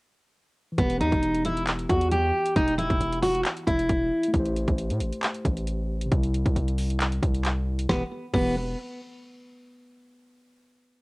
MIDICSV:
0, 0, Header, 1, 5, 480
1, 0, Start_track
1, 0, Key_signature, 1, "minor"
1, 0, Tempo, 444444
1, 845, Time_signature, 4, 2, 24, 8
1, 11901, End_track
2, 0, Start_track
2, 0, Title_t, "Steel-string acoustic guitar"
2, 0, Program_c, 0, 25
2, 846, Note_on_c, 0, 59, 87
2, 1033, Note_off_c, 0, 59, 0
2, 1086, Note_on_c, 0, 63, 78
2, 1536, Note_off_c, 0, 63, 0
2, 1568, Note_on_c, 0, 64, 78
2, 1754, Note_off_c, 0, 64, 0
2, 2049, Note_on_c, 0, 66, 76
2, 2235, Note_off_c, 0, 66, 0
2, 2285, Note_on_c, 0, 67, 84
2, 2736, Note_off_c, 0, 67, 0
2, 2765, Note_on_c, 0, 63, 104
2, 2952, Note_off_c, 0, 63, 0
2, 3000, Note_on_c, 0, 64, 83
2, 3454, Note_off_c, 0, 64, 0
2, 3480, Note_on_c, 0, 66, 91
2, 3670, Note_off_c, 0, 66, 0
2, 3960, Note_on_c, 0, 64, 79
2, 4639, Note_off_c, 0, 64, 0
2, 8524, Note_on_c, 0, 59, 85
2, 8664, Note_off_c, 0, 59, 0
2, 9005, Note_on_c, 0, 59, 84
2, 9228, Note_off_c, 0, 59, 0
2, 11901, End_track
3, 0, Start_track
3, 0, Title_t, "Tine electric piano"
3, 0, Program_c, 1, 4
3, 779, Note_on_c, 1, 52, 62
3, 842, Note_on_c, 1, 59, 61
3, 906, Note_on_c, 1, 67, 72
3, 1019, Control_c, 1, 64, 127
3, 4608, Note_off_c, 1, 52, 0
3, 4623, Note_on_c, 1, 57, 68
3, 4640, Note_off_c, 1, 59, 0
3, 4672, Note_off_c, 1, 67, 0
3, 4686, Note_on_c, 1, 67, 63
3, 4700, Control_c, 1, 64, 0
3, 4749, Note_on_c, 1, 72, 78
3, 4902, Control_c, 1, 64, 127
3, 6535, Note_off_c, 1, 57, 0
3, 6541, Note_on_c, 1, 48, 69
3, 6567, Note_off_c, 1, 67, 0
3, 6599, Note_off_c, 1, 72, 0
3, 6605, Note_on_c, 1, 55, 59
3, 6620, Control_c, 1, 64, 0
3, 6668, Note_on_c, 1, 64, 77
3, 6809, Control_c, 1, 64, 127
3, 8454, Note_off_c, 1, 48, 0
3, 8487, Note_off_c, 1, 55, 0
3, 8519, Note_off_c, 1, 64, 0
3, 8524, Note_on_c, 1, 52, 84
3, 8524, Note_on_c, 1, 59, 76
3, 8524, Note_on_c, 1, 67, 91
3, 8537, Control_c, 1, 64, 0
3, 8663, Note_off_c, 1, 52, 0
3, 8663, Note_off_c, 1, 59, 0
3, 8664, Note_off_c, 1, 67, 0
3, 9003, Note_on_c, 1, 52, 85
3, 9003, Note_on_c, 1, 59, 77
3, 9003, Note_on_c, 1, 67, 90
3, 9227, Note_off_c, 1, 52, 0
3, 9227, Note_off_c, 1, 59, 0
3, 9227, Note_off_c, 1, 67, 0
3, 11901, End_track
4, 0, Start_track
4, 0, Title_t, "808-style bass"
4, 0, Program_c, 2, 38
4, 844, Note_on_c, 2, 28, 107
4, 1084, Note_on_c, 2, 40, 102
4, 1100, Note_off_c, 2, 28, 0
4, 1205, Note_off_c, 2, 40, 0
4, 1212, Note_on_c, 2, 28, 104
4, 2011, Note_off_c, 2, 28, 0
4, 2046, Note_on_c, 2, 40, 105
4, 2506, Note_off_c, 2, 40, 0
4, 2765, Note_on_c, 2, 28, 110
4, 3117, Note_off_c, 2, 28, 0
4, 3133, Note_on_c, 2, 28, 100
4, 3240, Note_off_c, 2, 28, 0
4, 3245, Note_on_c, 2, 28, 104
4, 3706, Note_off_c, 2, 28, 0
4, 3965, Note_on_c, 2, 28, 103
4, 4195, Note_off_c, 2, 28, 0
4, 4205, Note_on_c, 2, 28, 102
4, 4435, Note_off_c, 2, 28, 0
4, 4685, Note_on_c, 2, 33, 109
4, 5037, Note_off_c, 2, 33, 0
4, 5052, Note_on_c, 2, 33, 109
4, 5292, Note_on_c, 2, 45, 97
4, 5308, Note_off_c, 2, 33, 0
4, 5405, Note_on_c, 2, 33, 102
4, 5421, Note_off_c, 2, 45, 0
4, 5525, Note_off_c, 2, 33, 0
4, 5885, Note_on_c, 2, 33, 104
4, 6576, Note_off_c, 2, 33, 0
4, 6605, Note_on_c, 2, 36, 109
4, 6957, Note_off_c, 2, 36, 0
4, 6972, Note_on_c, 2, 36, 104
4, 7078, Note_off_c, 2, 36, 0
4, 7084, Note_on_c, 2, 36, 106
4, 7775, Note_off_c, 2, 36, 0
4, 7804, Note_on_c, 2, 36, 103
4, 8496, Note_off_c, 2, 36, 0
4, 8525, Note_on_c, 2, 28, 102
4, 8664, Note_off_c, 2, 28, 0
4, 9004, Note_on_c, 2, 28, 110
4, 9451, Note_off_c, 2, 28, 0
4, 11901, End_track
5, 0, Start_track
5, 0, Title_t, "Drums"
5, 844, Note_on_c, 9, 36, 116
5, 844, Note_on_c, 9, 42, 77
5, 952, Note_off_c, 9, 36, 0
5, 952, Note_off_c, 9, 42, 0
5, 970, Note_on_c, 9, 42, 64
5, 1078, Note_off_c, 9, 42, 0
5, 1088, Note_on_c, 9, 42, 71
5, 1196, Note_off_c, 9, 42, 0
5, 1212, Note_on_c, 9, 36, 93
5, 1213, Note_on_c, 9, 42, 50
5, 1320, Note_off_c, 9, 36, 0
5, 1321, Note_off_c, 9, 42, 0
5, 1325, Note_on_c, 9, 42, 80
5, 1433, Note_off_c, 9, 42, 0
5, 1453, Note_on_c, 9, 42, 62
5, 1561, Note_off_c, 9, 42, 0
5, 1564, Note_on_c, 9, 42, 84
5, 1672, Note_off_c, 9, 42, 0
5, 1695, Note_on_c, 9, 42, 62
5, 1803, Note_off_c, 9, 42, 0
5, 1805, Note_on_c, 9, 39, 119
5, 1807, Note_on_c, 9, 42, 72
5, 1913, Note_off_c, 9, 39, 0
5, 1915, Note_off_c, 9, 42, 0
5, 1932, Note_on_c, 9, 42, 55
5, 2040, Note_off_c, 9, 42, 0
5, 2046, Note_on_c, 9, 36, 94
5, 2048, Note_on_c, 9, 42, 81
5, 2154, Note_off_c, 9, 36, 0
5, 2156, Note_off_c, 9, 42, 0
5, 2173, Note_on_c, 9, 42, 60
5, 2281, Note_off_c, 9, 42, 0
5, 2284, Note_on_c, 9, 42, 81
5, 2392, Note_off_c, 9, 42, 0
5, 2653, Note_on_c, 9, 42, 79
5, 2761, Note_off_c, 9, 42, 0
5, 2765, Note_on_c, 9, 36, 117
5, 2766, Note_on_c, 9, 42, 75
5, 2873, Note_off_c, 9, 36, 0
5, 2874, Note_off_c, 9, 42, 0
5, 2892, Note_on_c, 9, 42, 63
5, 3000, Note_off_c, 9, 42, 0
5, 3009, Note_on_c, 9, 42, 72
5, 3117, Note_off_c, 9, 42, 0
5, 3132, Note_on_c, 9, 36, 95
5, 3134, Note_on_c, 9, 42, 50
5, 3240, Note_off_c, 9, 36, 0
5, 3242, Note_off_c, 9, 42, 0
5, 3246, Note_on_c, 9, 42, 85
5, 3354, Note_off_c, 9, 42, 0
5, 3375, Note_on_c, 9, 42, 65
5, 3483, Note_off_c, 9, 42, 0
5, 3484, Note_on_c, 9, 46, 91
5, 3592, Note_off_c, 9, 46, 0
5, 3614, Note_on_c, 9, 42, 63
5, 3722, Note_off_c, 9, 42, 0
5, 3724, Note_on_c, 9, 39, 123
5, 3726, Note_on_c, 9, 42, 71
5, 3832, Note_off_c, 9, 39, 0
5, 3834, Note_off_c, 9, 42, 0
5, 3851, Note_on_c, 9, 42, 54
5, 3959, Note_off_c, 9, 42, 0
5, 3965, Note_on_c, 9, 36, 94
5, 3968, Note_on_c, 9, 42, 83
5, 4073, Note_off_c, 9, 36, 0
5, 4076, Note_off_c, 9, 42, 0
5, 4093, Note_on_c, 9, 42, 60
5, 4201, Note_off_c, 9, 42, 0
5, 4204, Note_on_c, 9, 42, 81
5, 4205, Note_on_c, 9, 36, 93
5, 4312, Note_off_c, 9, 42, 0
5, 4313, Note_off_c, 9, 36, 0
5, 4572, Note_on_c, 9, 42, 80
5, 4680, Note_off_c, 9, 42, 0
5, 4685, Note_on_c, 9, 36, 120
5, 4685, Note_on_c, 9, 42, 75
5, 4793, Note_off_c, 9, 36, 0
5, 4793, Note_off_c, 9, 42, 0
5, 4811, Note_on_c, 9, 42, 62
5, 4919, Note_off_c, 9, 42, 0
5, 4928, Note_on_c, 9, 42, 72
5, 5036, Note_off_c, 9, 42, 0
5, 5052, Note_on_c, 9, 36, 99
5, 5054, Note_on_c, 9, 42, 50
5, 5160, Note_off_c, 9, 36, 0
5, 5162, Note_off_c, 9, 42, 0
5, 5165, Note_on_c, 9, 42, 79
5, 5273, Note_off_c, 9, 42, 0
5, 5294, Note_on_c, 9, 42, 62
5, 5402, Note_off_c, 9, 42, 0
5, 5404, Note_on_c, 9, 42, 83
5, 5512, Note_off_c, 9, 42, 0
5, 5535, Note_on_c, 9, 42, 63
5, 5643, Note_off_c, 9, 42, 0
5, 5645, Note_on_c, 9, 39, 119
5, 5647, Note_on_c, 9, 42, 75
5, 5753, Note_off_c, 9, 39, 0
5, 5755, Note_off_c, 9, 42, 0
5, 5771, Note_on_c, 9, 42, 55
5, 5879, Note_off_c, 9, 42, 0
5, 5885, Note_on_c, 9, 36, 93
5, 5888, Note_on_c, 9, 42, 84
5, 5993, Note_off_c, 9, 36, 0
5, 5996, Note_off_c, 9, 42, 0
5, 6013, Note_on_c, 9, 42, 60
5, 6121, Note_off_c, 9, 42, 0
5, 6124, Note_on_c, 9, 42, 80
5, 6232, Note_off_c, 9, 42, 0
5, 6492, Note_on_c, 9, 42, 79
5, 6600, Note_off_c, 9, 42, 0
5, 6604, Note_on_c, 9, 42, 79
5, 6605, Note_on_c, 9, 36, 120
5, 6712, Note_off_c, 9, 42, 0
5, 6713, Note_off_c, 9, 36, 0
5, 6731, Note_on_c, 9, 42, 64
5, 6839, Note_off_c, 9, 42, 0
5, 6849, Note_on_c, 9, 42, 72
5, 6957, Note_off_c, 9, 42, 0
5, 6972, Note_on_c, 9, 36, 96
5, 6974, Note_on_c, 9, 42, 50
5, 7080, Note_off_c, 9, 36, 0
5, 7082, Note_off_c, 9, 42, 0
5, 7085, Note_on_c, 9, 42, 81
5, 7193, Note_off_c, 9, 42, 0
5, 7214, Note_on_c, 9, 42, 61
5, 7322, Note_off_c, 9, 42, 0
5, 7322, Note_on_c, 9, 46, 89
5, 7430, Note_off_c, 9, 46, 0
5, 7454, Note_on_c, 9, 42, 60
5, 7562, Note_off_c, 9, 42, 0
5, 7564, Note_on_c, 9, 39, 119
5, 7567, Note_on_c, 9, 42, 73
5, 7672, Note_off_c, 9, 39, 0
5, 7675, Note_off_c, 9, 42, 0
5, 7691, Note_on_c, 9, 42, 55
5, 7799, Note_off_c, 9, 42, 0
5, 7805, Note_on_c, 9, 36, 97
5, 7807, Note_on_c, 9, 42, 87
5, 7913, Note_off_c, 9, 36, 0
5, 7915, Note_off_c, 9, 42, 0
5, 7932, Note_on_c, 9, 42, 58
5, 8041, Note_off_c, 9, 42, 0
5, 8043, Note_on_c, 9, 42, 82
5, 8045, Note_on_c, 9, 39, 99
5, 8151, Note_off_c, 9, 42, 0
5, 8153, Note_off_c, 9, 39, 0
5, 8412, Note_on_c, 9, 42, 80
5, 8520, Note_off_c, 9, 42, 0
5, 8525, Note_on_c, 9, 36, 106
5, 8525, Note_on_c, 9, 38, 90
5, 8633, Note_off_c, 9, 36, 0
5, 8633, Note_off_c, 9, 38, 0
5, 9004, Note_on_c, 9, 36, 110
5, 9004, Note_on_c, 9, 49, 88
5, 9112, Note_off_c, 9, 36, 0
5, 9112, Note_off_c, 9, 49, 0
5, 11901, End_track
0, 0, End_of_file